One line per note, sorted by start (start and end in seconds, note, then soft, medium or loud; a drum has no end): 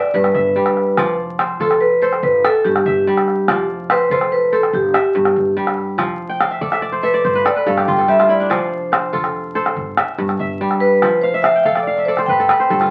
0.00 0.83 A4 medium
0.00 0.71 C5 medium
0.00 0.15 D5 loud
0.00 0.35 E5 medium
0.14 0.33 G1 medium
0.14 1.02 G2 medium
0.14 1.15 B4 medium
0.24 calabash click soft
0.34 0.54 G1 medium
0.34 1.04 E5 medium
0.34 calabash thump medium
0.56 1.02 G3 medium
0.66 calabash click soft
0.77 calabash click soft
0.97 1.56 F1 medium
0.97 2.28 F3 medium
0.97 2.08 D5 medium
0.97 calabash thump medium
0.97 calabash click medium
1.39 2.02 C5 medium
1.39 calabash click medium
1.60 2.19 F1 medium
1.60 2.50 F4 medium
1.60 2.02 A4 medium
1.60 1.82 A4 medium
1.60 calabash thump medium
1.71 calabash click medium
1.81 2.02 B4 medium
2.02 3.34 A4 medium
2.02 2.23 C5 medium
2.02 3.21 C5 medium
2.13 calabash click soft
2.23 2.42 G1 medium
2.23 2.42 B4 medium
2.23 calabash thump medium
2.44 2.66 A4 medium
2.44 2.86 E5 medium
2.44 calabash click medium
2.64 2.84 G1 medium
2.64 3.53 G2 medium
2.64 3.65 G4 medium
2.76 calabash click medium
2.85 3.05 G1 medium
2.85 3.55 E5 medium
2.85 calabash thump medium
3.07 3.53 G3 medium
3.17 calabash click medium
3.28 calabash click soft
3.48 4.07 F1 medium
3.48 4.78 F3 medium
3.48 4.60 D5 medium
3.48 calabash thump medium
3.48 calabash click medium
3.90 4.12 B4 medium
3.90 4.52 C5 medium
3.90 calabash click medium
4.10 4.69 F1 medium
4.10 5.00 F4 medium
4.10 4.52 A4 medium
4.10 4.33 C5 loud
4.10 calabash thump medium
4.21 calabash click soft
4.32 4.53 B4 medium
4.53 5.84 A4 medium
4.53 4.74 A4 medium
4.53 5.71 C5 medium
4.63 calabash click soft
4.73 4.93 G1 medium
4.73 4.94 G4 medium
4.73 calabash thump medium
4.94 5.53 G4 medium
4.94 5.97 E5 medium
4.94 calabash click medium
5.15 5.35 G1 medium
5.15 6.04 G2 medium
5.25 calabash click soft
5.36 5.56 G1 medium
5.36 calabash thump medium
5.57 6.04 G3 medium
5.67 calabash click soft
5.78 calabash click soft
5.98 6.58 F1 medium
5.98 7.30 F3 medium
5.98 calabash thump medium
5.98 calabash click medium
6.29 7.23 G5 medium
6.41 6.78 F5 medium
6.41 calabash click medium
6.51 6.71 E5 medium
6.61 7.21 F1 medium
6.61 7.03 A4 medium
6.61 6.82 D5 medium
6.61 calabash thump medium
6.72 7.03 E5 medium
6.72 calabash click soft
6.82 7.13 D5 medium
6.92 7.24 C5 medium
7.03 7.45 A4 medium
7.03 7.46 B4 medium
7.03 7.94 E5 medium
7.14 8.25 D5 medium
7.25 7.44 G1 medium
7.25 7.62 C5 medium
7.25 calabash thump medium
7.35 7.56 B4 medium
7.45 7.66 A4 medium
7.45 7.68 D5 medium
7.45 calabash click medium
7.56 8.79 B4 medium
7.66 7.86 G1 medium
7.66 8.55 G2 medium
7.66 7.98 A4 medium
7.66 7.88 F5 medium
7.78 8.08 G4 medium
7.78 calabash click soft
7.87 8.07 G1 medium
7.87 8.19 F4 medium
7.87 8.08 G5 medium
7.87 calabash thump medium
7.98 9.12 A4 medium
7.98 calabash click soft
8.08 8.55 G3 medium
8.08 9.49 G4 medium
8.08 8.30 E5 medium
8.19 9.12 F4 medium
8.19 calabash click soft
8.29 8.56 E4 medium
8.29 8.39 D5 medium
8.40 10.08 D4 medium
8.50 9.09 F1 medium
8.50 9.81 F3 medium
8.50 9.10 C5 medium
8.50 9.61 D5 medium
8.50 calabash thump medium
8.50 calabash click medium
8.92 9.55 C5 medium
8.92 calabash click medium
9.13 9.72 F1 medium
9.13 10.04 F4 medium
9.13 9.55 A4 medium
9.13 calabash thump medium
9.24 calabash click medium
9.55 10.87 A4 medium
9.55 10.74 C5 medium
9.66 calabash click soft
9.76 9.96 G1 medium
9.76 calabash thump medium
9.97 10.40 E5 medium
9.97 calabash click medium
10.18 10.38 G1 loud
10.18 11.07 G2 medium
10.29 calabash click soft
10.39 10.59 G1 medium
10.39 11.09 E5 medium
10.39 calabash thump medium
10.61 11.07 G3 medium
10.71 calabash click soft
10.80 11.24 B4 medium
10.80 calabash click soft
11.02 11.61 F1 medium
11.02 12.33 F3 medium
11.02 calabash thump medium
11.02 calabash click medium
11.21 11.44 C5 medium
11.21 11.45 F5 medium
11.34 11.72 E5 medium
11.42 11.65 E5 medium
11.42 11.65 F5 medium
11.42 calabash click medium
11.56 12.49 G5 medium
11.64 12.24 F1 medium
11.64 12.08 A4 medium
11.64 11.73 F5 medium
11.64 11.87 F5 medium
11.64 calabash thump medium
11.75 12.08 D5 medium
11.75 calabash click soft
11.83 12.06 D5 medium
11.87 12.87 F5 medium
11.98 12.87 E5 medium
12.05 12.39 A4 medium
12.05 12.28 C5 medium
12.05 12.90 D5 medium
12.17 12.56 C5 medium
12.17 calabash click soft
12.26 12.48 G1 medium
12.26 12.49 B4 medium
12.26 12.86 G5 medium
12.26 calabash thump medium
12.40 12.70 A4 medium
12.49 12.90 B4 medium
12.49 calabash click medium
12.60 12.90 C5 medium
12.70 12.90 G1 medium
12.70 12.90 G2 medium
12.70 12.90 A4 medium
12.81 12.90 F4 medium
12.81 calabash click soft